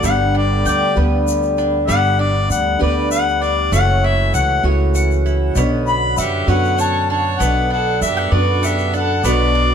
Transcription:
Already playing: accordion D3
0.03 upright bass G1, steel-string acoustic guitar G2 D3 G3 B3 D4 G4, mandolin G3, accordion G3 B3 G4, harmonica F#5, shaker
0.35 mandolin D4, harmonica D5
0.65 upright bass D2, harmonica D5, mandolin G5, shaker
0.96 upright bass D2, steel-string acoustic guitar G2 D3 G3 B3 D4 G4, mandolin B4
1.28 shaker
1.43 shaker
1.58 mandolin D4, shaker
1.87 upright bass G1, steel-string acoustic guitar G2 D3 G3 B3 D4 G4, mandolin G3, accordion F#5, harmonica F#5, shaker
2.19 mandolin D4, harmonica D5
2.50 upright bass D2, harmonica F#5, shaker
2.79 upright bass D2, steel-string acoustic guitar G2 D3 G3 B3 D4 G4, mandolin B4, harmonica D5
3.11 harmonica F#5, shaker
3.28 shaker
3.42 mandolin D4, harmonica D5, shaker
3.71 upright bass F#1, steel-string acoustic guitar F#2 C#3 E3 A3 C#4 F#4, accordion E3 A3, mandolin A3, harmonica F#5, shaker
4.04 mandolin E4, harmonica E5
4.34 upright bass C#2, mandolin F#5, harmonica F#5, shaker
4.63 upright bass C#2, steel-string acoustic guitar F#2 C#3 E3 A3 C#4 F#4, mandolin C#5
4.95 mandolin F#5, shaker
5.11 shaker
5.26 mandolin E4, shaker
5.55 upright bass B1, steel-string acoustic guitar B2 C#4 D4, accordion D3 B3, mandolin B3, shaker
5.87 harmonica B5, shaker
6.17 upright bass F#2, fiddle G4, harmonica E5, mandolin F#5, shaker
6.47 upright bass F#2, steel-string acoustic guitar B2 F#3 C#4 D4 F#4, fiddle B4, mandolin C#5, harmonica F#5, shaker
6.64 shaker
6.78 fiddle C#5, mandolin F#5, harmonica A5, shaker
7.10 mandolin D4, fiddle C#5, harmonica A5
7.39 upright bass B1, steel-string acoustic guitar B2 B3 D4, accordion D3 B3 D4, mandolin B3, fiddle B4, harmonica F#5, shaker
7.70 mandolin D4, fiddle A4, harmonica F#5
8.01 upright bass F#2, fiddle G4, harmonica E5, mandolin E5, shaker
8.17 mandolin F#5
8.32 upright bass F#2, steel-string acoustic guitar B2 B3 D4, fiddle F#4, mandolin B4, harmonica D5
8.63 fiddle G4, harmonica E5, mandolin F#5, shaker
8.78 shaker
8.94 mandolin D4, fiddle A4, harmonica F#5, shaker
9.24 upright bass B1, steel-string acoustic guitar B2 F#3 B3 D4 F#4, mandolin B3, fiddle F#4, harmonica D5, shaker
9.55 mandolin D4

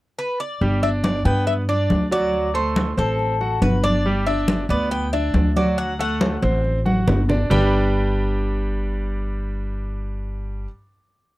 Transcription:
0.19 cuban tres B4
0.40 cuban tres D5
0.61 upright bass G1, grand piano G3 G4, high conga
0.83 grand piano D4 D5, cuban tres E5, high conga
1.04 cuban tres D5, high conga
1.25 upright bass G2, grand piano B3 B4, cuban tres G5, high conga
1.47 cuban tres E5, high conga
1.69 grand piano D4 D5, cuban tres D5, high conga
1.90 upright bass D2, high conga
2.11 grand piano F#3 F#4, cuban tres D5
2.33 high conga
2.54 grand piano A3 A4, cuban tres C5, high conga
2.76 high conga
2.97 upright bass A1, grand piano C4 C5, cuban tres A4, high conga
3.19 high conga
3.41 grand piano F#4 F#5, high conga
3.62 upright bass G1, cuban tres B4, high conga
3.84 grand piano D4 D5, cuban tres D5, high conga
4.05 grand piano G3 G4, high conga
4.27 grand piano D4 D5, cuban tres E5, high conga
4.48 high conga
4.69 upright bass D2, grand piano B3 B4, cuban tres D5, high conga
4.91 cuban tres G5, high conga
5.13 grand piano D4 D5, cuban tres E5, high conga
5.34 upright bass D2, high conga
5.56 grand piano F#3 F#4, cuban tres D5, high conga
5.78 cuban tres F#5, high conga
5.99 grand piano A3 A4, cuban tres F#5, high conga
6.21 high conga
6.42 upright bass A1, grand piano C4 C5, high conga
6.64 high conga
6.85 grand piano F#4 F#5, high conga
7.08 upright bass G1, low conga
7.29 grand piano D4 D5, low conga
7.50 upright bass G1, grand piano G3 D4 G4 B4 D5 G5, cuban tres B5, low conga

